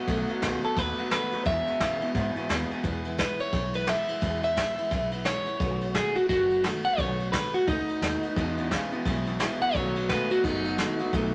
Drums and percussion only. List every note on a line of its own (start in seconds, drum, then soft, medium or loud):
0.08 kick loud
0.08 ride medium
0.29 ride medium
0.42 kick medium
0.42 snare loud
0.42 ride medium
0.63 ride medium
0.77 kick loud
0.77 snare soft
0.77 ride medium
0.98 ride medium
1.11 snare loud
1.11 ride medium
1.32 ride medium
1.46 kick loud
1.46 ride medium
1.67 ride medium
1.80 kick medium
1.80 snare loud
1.80 ride medium
2.01 ride medium
2.14 kick loud
2.14 snare soft
2.14 ride medium
2.36 ride medium
2.50 snare loud
2.50 ride medium
2.71 ride medium
2.84 kick loud
2.84 ride medium
3.05 ride medium
3.18 kick medium
3.18 snare loud
3.18 ride medium
3.39 ride medium
3.53 kick loud
3.53 snare soft
3.53 ride medium
3.74 ride medium
3.87 snare loud
3.87 ride medium
4.08 ride medium
4.22 kick loud
4.22 ride medium
4.43 ride medium
4.57 kick medium
4.57 snare loud
4.57 ride medium
4.78 ride medium
4.91 kick loud
4.91 snare soft
4.91 ride medium
5.11 ride medium
5.25 snare loud
5.25 ride medium
5.46 ride medium
5.60 kick loud
5.60 ride medium
5.81 ride medium
5.94 kick medium
5.94 snare loud
5.94 ride medium
6.16 ride medium
6.29 kick loud
6.29 snare soft
6.29 ride loud
6.50 ride medium
6.64 snare loud
6.64 ride medium
6.84 ride medium
6.98 kick loud
6.98 ride medium
7.20 ride medium
7.33 kick medium
7.33 snare loud
7.33 ride loud
7.54 ride medium
7.67 kick loud
7.67 snare soft
7.67 ride medium
7.88 ride medium
8.02 snare loud
8.02 ride medium
8.23 ride medium
8.36 kick loud
8.36 ride medium
8.58 ride medium
8.71 kick medium
8.71 snare loud
8.71 ride medium
8.92 ride medium
9.05 kick loud
9.05 snare soft
9.05 ride loud
9.26 ride medium
9.40 snare loud
9.40 ride medium
9.61 ride medium
9.74 kick loud
9.74 ride medium
9.96 ride medium
10.09 kick medium
10.09 snare loud
10.09 ride medium
10.31 ride medium
10.44 kick loud
10.44 snare soft
10.44 ride medium
10.65 ride medium
10.78 snare loud
10.78 ride medium
10.99 ride medium
11.13 kick loud
11.13 ride medium